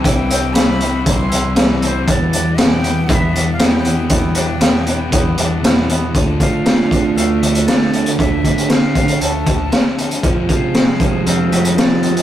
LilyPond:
<<
  \new Staff \with { instrumentName = "Flute" } { \time 4/4 \key d \dorian \tempo 4 = 118 g''4 b''4 c'''4 r8 c''8 | d''4 g''4 e''8. f''16 g''4 | g''2. r4 | r8 f''4. f''8 e''8 d''4 |
e''4 f''4 a''4 r4 | r8 f''4. f''8 e''8 d''4 | }
  \new Staff \with { instrumentName = "Clean electric guitar" } { \clef bass \time 4/4 \key d \dorian <e c' e'>8 c'8 e8 c'8 e8 e'8 e8 c'8 | b8 d'8 b8 b8 b8 d'8 b8 b8 | b8 d'8 b8 b8 b8 d'8 b8 b8 | f8 f8 f8 f8 a8 f8 f8 f8 |
f8 f8 f8 f8 a8 f8 f8 f8 | f8 f8 aes8 f8 c'8 aes8 f8 aes8 | }
  \new Staff \with { instrumentName = "Overdriven electric guitar" } { \clef bass \time 4/4 \key d \dorian <c e g c' e'>4 <e g c' e'>8 <g c' e'>8 <e g c' e'>4 <c e g c' e'>8 <g c' e'>8 | <e, b, e g b e'>4 <e g b e'>8 <e g b e'>8 <e g b e'>4 <e, b, e g b e'>8 <e g b e'>8 | <e, b, e g b e'>4 <e g b e'>8 <e g b e'>8 <e g b e'>4 <e, b, e g b e'>8 <e g b e'>8 | <d a d' f'>1~ |
<d a d' f'>1 | <f, c f aes c' f'>1 | }
  \new Staff \with { instrumentName = "Distorted electric guitar" } { \clef bass \time 4/4 \key d \dorian <c g c'>8 <g c'>8 <c g c'>8 <g c'>8 <c g c'>4 <c g c'>8 <g c'>8 | <e, b, e>8 <b, e>8 <e, b, e>8 <b, e>8 <e, b, e>4 <e, b, e>8 <b, e>8 | <e, b, e>8 <b, e>8 <e, b, e>8 <b, e>8 <e, b, e>4 <e, b, e>8 <b, e>8 | <d a d'>8 <a d'>8 <d a d'>8 <a d'>8 <d a d'>8 <a d'>8 <d a d'>8 <a d'>8 |
<d a d'>8 <a d'>8 <d a d'>8 <a d'>8 <d a d'>8 <a d'>8 <d a d'>8 <a d'>8 | <f, c f>8 <c f>8 <f, c f>8 <c f>8 <f, c f>8 <c f>8 <f, c f>8 <c f>8 | }
  \new Staff \with { instrumentName = "Picked electric bass" } { \clef bass \time 4/4 \key d \dorian c,2 c,8 c,4. | e,2 e,8 e,4. | e,2 e,8 e,4. | d,8 r4. d,8 d,8 r4 |
d,8 r4. d,8 d,8 r4 | f,8 r4. f,8 f,8 r4 | }
  \new DrumStaff \with { instrumentName = "Drums" } \drummode { \time 4/4 <hh bd>8 hh8 <hh sn>8 hh8 <hh bd>8 hh8 <hh sn>8 hh8 | <hh bd>8 hh8 <hh sn>8 hh8 <hh bd>8 hh8 <hh sn>8 hh8 | <hh bd>8 hh8 <hh sn>8 hh8 <hh bd>8 hh8 <hh sn>8 hh8 | <hh bd>8 <hh bd>8 <hh sn>8 <hh bd>8 hh8 hh16 hh16 <hh sn>16 sn16 hh16 hh16 |
<hh bd>8 <hh bd>16 hh16 <hh sn>8 <hh bd>16 hh16 hh8 <hh bd>8 <hh sn>8 hh16 hh16 | <hh bd>8 <hh bd>8 <hh sn>8 <hh bd>8 hh8 hh16 hh16 <hh sn>8 hh16 hh16 | }
>>